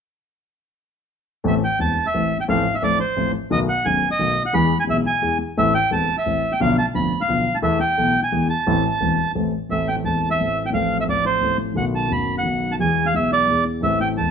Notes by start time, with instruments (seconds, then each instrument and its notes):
1.44 grand piano A1 A2 E3 A3 C4 A4, bandoneon E5
1.64 bandoneon G5
1.79 grand piano E1 E2 E3 A3 C4 A4, bandoneon A5
2.07 bandoneon E5
2.14 grand piano A1 A2 E3 A3 C4 A4
2.41 bandoneon G5
2.48 grand piano A1 A2 F3 A3 C4 A4, bandoneon F5
2.75 bandoneon E5
2.82 grand piano A1 A2 F3 A3 C4 A4, bandoneon D5
3.00 bandoneon C5
3.16 grand piano A1 A2 F3 A3 C4 A4
3.50 grand piano B1 B2 D#3 A3 B3 F#4, bandoneon D#5
3.69 bandoneon F#5
3.85 grand piano F#1 F#2 D#3 A3 B3 F#4, bandoneon G#5
4.11 bandoneon D#5
4.19 grand piano B1 B2 D#3 A3 B3 F#4
4.46 bandoneon F#5
4.53 grand piano E2 E3 G#3 B3 G#4, bandoneon B5
4.80 bandoneon G#5
4.87 grand piano B1 B2 E3 G#3 B3 G#4, bandoneon E5
5.07 bandoneon G#5
5.22 grand piano E2 E3 G#3 B3 G#4
5.57 grand piano A1 A2 E3 A3 C4 A4, bandoneon E5
5.75 bandoneon G5
5.91 grand piano E1 E2 E3 A3 C4 A4, bandoneon A5
6.18 bandoneon E5
6.26 grand piano A1 A2 E3 A3 C4 A4
6.52 bandoneon G5
6.60 grand piano B1 B2 D3 F3 B3 F4, bandoneon F5
6.78 bandoneon A5
6.94 grand piano F1 F2 D3 F3 B3 F4, bandoneon B5
7.21 bandoneon F5
7.28 grand piano B1 B2 D3 F3 B3 F4
7.55 bandoneon A5
7.62 grand piano E2 E3 A3 B3 A4, bandoneon E5
7.80 bandoneon G5
7.97 grand piano B1 B2 E3 A3 B3 A4
8.23 bandoneon G#5
8.32 grand piano E2 E3 G#3 B3 G#4
8.50 bandoneon A5
8.66 grand piano A1 A2 E3 A3 C4 A4
9.00 grand piano E1 E2 E3 A3 C4 A4
9.35 grand piano A1 A2 E3 A3 C4 A4
9.69 grand piano A1 A2 E3 A3 C4 A4, bandoneon E5
9.88 bandoneon G5
10.03 grand piano E1 E2 E3 A3 C4 A4, bandoneon A5
10.31 bandoneon E5
10.38 grand piano A1 A2 E3 A3 C4 A4
10.66 bandoneon G5
10.72 grand piano A1 A2 F3 A3 C4 A4, bandoneon F5
11.01 bandoneon E5
11.06 grand piano A1 A2 F3 A3 C4 A4, bandoneon D5
11.26 bandoneon C5
11.40 grand piano A1 A2 F3 A3 C4 A4
11.74 grand piano B1 B2 D#3 A3 B3, bandoneon F#5
11.78 grand piano F#4
11.95 bandoneon A5
12.08 grand piano F#1 F#2 D#3 A3 B3
12.12 grand piano F#4, bandoneon B5
12.38 bandoneon F#5
12.43 grand piano B1 B2 D#3 A3 B3 F#4
12.72 bandoneon A5
12.78 grand piano E2 E3 G#3 B3, bandoneon G#5
12.82 grand piano G#4
13.06 bandoneon F5
13.12 grand piano B1 B2 E3 G#3 B3 G#4, bandoneon E5
13.33 bandoneon D5
13.47 grand piano E2 E3 G#3 B3 G#4
13.80 grand piano A1 A2 E3 A3 C4, bandoneon E5
13.85 grand piano A4
14.01 bandoneon G5
14.16 grand piano E1 E2 E3 A3 C4, bandoneon A5
14.20 grand piano A4